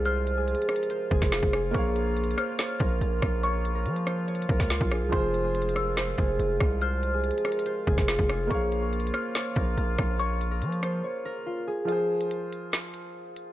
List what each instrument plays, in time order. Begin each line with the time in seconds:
Already playing: 808-style bass C2, woodwind section C3 F3 G#3 F4, grand piano F3 F4 G#4 C5, harp F4 G#4 A#4
0.05 harp C5, synth bell F6, closed hi-hat
0.27 closed hi-hat
0.37 harp G#4
0.48 closed hi-hat
0.55 closed hi-hat
0.62 closed hi-hat
0.69 harp A#4, cross-stick, closed hi-hat
0.76 closed hi-hat
0.83 closed hi-hat
0.90 harp C5, closed hi-hat
1.11 808-style bass F1, harp G#4, kick
1.22 808-style bass F1, kick, snare
1.32 harp F4, snare, closed hi-hat
1.43 808-style bass F1, kick
1.53 harp G#4, cross-stick, closed hi-hat
1.71 808-style bass A#1, woodwind section C#3 A#3, grand piano A#3 A#4, harp C#5, synth bell C#6, kick, closed hi-hat
1.76 grand piano C#5 F5
1.96 closed hi-hat
2.06 harp A#4
2.17 closed hi-hat
2.24 closed hi-hat
2.31 closed hi-hat
2.38 harp C5, synth bell F6, cross-stick, closed hi-hat
2.59 harp C#5, snare, closed hi-hat
2.80 808-style bass A#1, harp A#4, kick, closed hi-hat
3.01 808-style bass A#1, closed hi-hat
3.22 808-style bass A#1, kick, cross-stick
3.43 harp C#5, synth bell C#6, closed hi-hat
3.65 closed hi-hat
3.75 harp A#4
3.86 808-style bass F3, closed hi-hat
3.96 closed hi-hat
4.07 harp C5, cross-stick, closed hi-hat
4.28 harp C#5, closed hi-hat
4.35 closed hi-hat
4.42 closed hi-hat
4.49 808-style bass A#1, harp A#4, kick
4.60 808-style bass C#2, kick, snare
4.70 harp F4, snare, closed hi-hat
4.81 808-style bass A#1, kick
4.91 harp G#4, cross-stick, closed hi-hat
5.02 808-style bass C2
5.09 808-style bass F1, woodwind section C3 F3 G#3, grand piano F3 F4, harp C5, synth bell C6, kick, closed hi-hat
5.14 grand piano G#4 C5
5.34 closed hi-hat
5.44 harp G#4
5.55 closed hi-hat
5.62 closed hi-hat
5.69 closed hi-hat
5.76 harp A#4, synth bell E6, cross-stick, closed hi-hat
5.97 harp C5, snare, closed hi-hat
6.18 808-style bass F1, harp G#4, kick, closed hi-hat
6.39 808-style bass F1, closed hi-hat
6.60 808-style bass C2, kick, cross-stick
6.82 harp C5, synth bell F6, closed hi-hat
7.03 closed hi-hat
7.13 harp G#4
7.24 closed hi-hat
7.31 closed hi-hat
7.38 closed hi-hat
7.45 harp A#4, cross-stick, closed hi-hat
7.52 closed hi-hat
7.59 closed hi-hat
7.66 harp C5, closed hi-hat
7.87 808-style bass F1, harp G#4, kick
7.98 808-style bass F1, kick, snare
8.08 harp F4, snare, closed hi-hat
8.19 808-style bass F1, kick
8.29 harp G#4, cross-stick, closed hi-hat
8.47 808-style bass A#1, woodwind section C#3 A#3 F4, grand piano A#3 A#4, harp C#5, synth bell C#6, kick, closed hi-hat
8.52 grand piano C#5 F5
8.72 closed hi-hat
8.82 harp A#4
8.93 closed hi-hat
9.00 closed hi-hat
9.07 closed hi-hat
9.14 harp C5, synth bell F6, cross-stick, closed hi-hat
9.35 harp C#5, snare, closed hi-hat
9.56 808-style bass A#1, harp A#4, kick, closed hi-hat
9.77 808-style bass A#1, closed hi-hat
9.98 808-style bass A#1, kick, cross-stick
10.19 harp C#5, synth bell C#6, closed hi-hat
10.41 closed hi-hat
10.51 harp A#4
10.62 808-style bass F3, closed hi-hat
10.72 closed hi-hat
10.83 harp C5, cross-stick, closed hi-hat
11.04 harp C#5
11.25 harp A#4
11.46 harp F4
11.67 harp G#4
11.85 grand piano F3 F4, closed hi-hat
11.90 grand piano G#4 C5
12.21 closed hi-hat
12.31 closed hi-hat
12.53 closed hi-hat
12.73 snare, closed hi-hat
12.94 closed hi-hat
13.36 closed hi-hat